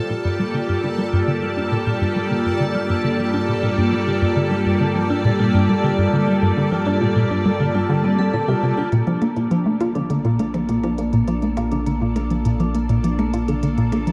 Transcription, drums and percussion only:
8.92 closed hi-hat
9.07 closed hi-hat
9.22 closed hi-hat, percussion blips
9.36 closed hi-hat
9.51 closed hi-hat
9.81 closed hi-hat, percussion blips
9.95 closed hi-hat
10.10 closed hi-hat
10.25 closed hi-hat
10.39 closed hi-hat
10.54 closed hi-hat, percussion blips
10.69 closed hi-hat
10.83 closed hi-hat, percussion blips
10.98 closed hi-hat
11.13 closed hi-hat
11.28 closed hi-hat
11.42 closed hi-hat
11.57 closed hi-hat, percussion blips
11.72 closed hi-hat
11.86 closed hi-hat
12.16 closed hi-hat, percussion blips
12.30 closed hi-hat
12.45 closed hi-hat
12.60 closed hi-hat
12.75 closed hi-hat
12.89 closed hi-hat
13.04 closed hi-hat
13.19 closed hi-hat, percussion blips
13.34 closed hi-hat
13.48 closed hi-hat
13.63 closed hi-hat
13.78 closed hi-hat
13.92 closed hi-hat, percussion blips
14.07 closed hi-hat

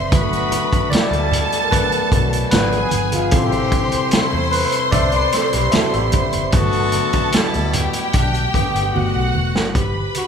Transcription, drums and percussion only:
0.12 kick, closed hi-hat, muted conga
0.33 closed hi-hat
0.52 closed hi-hat, muted conga
0.73 kick, closed hi-hat
0.92 snare, closed hi-hat, high conga
1.13 closed hi-hat
1.31 closed hi-hat, low conga
1.52 closed hi-hat
1.71 kick, closed hi-hat, muted conga
1.92 closed hi-hat
2.12 kick, closed hi-hat, muted conga, low conga
2.33 closed hi-hat
2.51 snare, closed hi-hat, high conga
2.72 closed hi-hat
2.91 closed hi-hat, high conga
3.12 closed hi-hat, high conga
3.31 kick, closed hi-hat, muted conga
3.52 closed hi-hat
3.72 kick, closed hi-hat, muted conga
3.92 closed hi-hat
4.11 snare, closed hi-hat, high conga
4.52 open hi-hat
4.72 closed hi-hat
4.92 kick, closed hi-hat, muted conga, low conga
5.12 closed hi-hat
5.32 snare, closed hi-hat
5.53 closed hi-hat
5.72 snare, closed hi-hat, high conga
5.93 closed hi-hat
6.12 kick, closed hi-hat, high conga
6.33 closed hi-hat, high conga
6.52 kick, closed hi-hat, muted conga
6.73 closed hi-hat
6.92 closed hi-hat, muted conga
7.13 kick, closed hi-hat
7.32 snare, closed hi-hat, high conga
7.54 closed hi-hat
7.73 closed hi-hat, low conga
7.93 closed hi-hat
8.13 kick, closed hi-hat, muted conga
8.34 closed hi-hat
8.54 kick, closed hi-hat, low conga
8.76 closed hi-hat
8.96 high conga
9.35 high conga
9.55 snare, high conga
9.75 kick, closed hi-hat, muted conga
10.15 closed hi-hat, muted conga

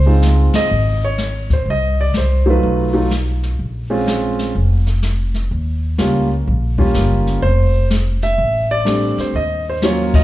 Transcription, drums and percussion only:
0.22 snare, hi-hat pedal
0.54 snare, ride
0.70 brush sweep
1.18 snare, hi-hat pedal
1.50 kick, snare
1.66 brush sweep
2.14 snare, hi-hat pedal
2.62 brush sweep
3.11 snare, hi-hat pedal
3.43 snare
3.60 brush sweep
4.07 snare, hi-hat pedal
4.39 snare
4.55 brush sweep
4.87 snare
5.02 snare, hi-hat pedal
5.34 snare
5.50 brush sweep
5.98 snare, hi-hat pedal
6.47 brush sweep
6.78 kick
6.94 snare, hi-hat pedal
7.27 snare
7.42 brush sweep
7.90 snare, hi-hat pedal
8.22 snare
8.39 brush sweep
8.86 snare, hi-hat pedal
9.18 snare
9.34 brush sweep
9.82 snare, hi-hat pedal
10.14 kick, ride

